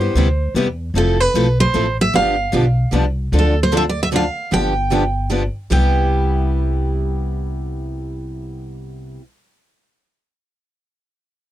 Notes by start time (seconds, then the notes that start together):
Already playing: C5
0.01 B3 E4 G4
0.15 D2 C3 G3 B3 E4 G4
0.54 E2 C3 G3 B3 E4 G4
0.94 F1 F3 A3 C4 E4 A4
1.20 B4
1.34 B1 F3 A3 C4 E4 A4
1.60 C5
1.74 A1 F3 A3 C4 E4 A4
2.01 E5
2.13 G1 D3 F3 B3 D4 G4 F5
2.52 B1 D3 F3 B3 D4 G4
2.92 C2 D3 F3 B3 D4 G4
3.32 D2 D3 F3 C4 D4 A4
3.39 A4
3.63 C5
3.72 D3 F3 C4 D4 A4
3.77 E5
3.89 D5
4.03 E5
4.12 D3 F3 C4 D4 A4 F5
4.52 G1 D3 F3 B3 D4 G4 G5
4.92 D3 F3 B3 D4 G4
5.30 D3 F3 B3 D4 G4
5.70 C2 C3 G3 B3 E4 G4 G5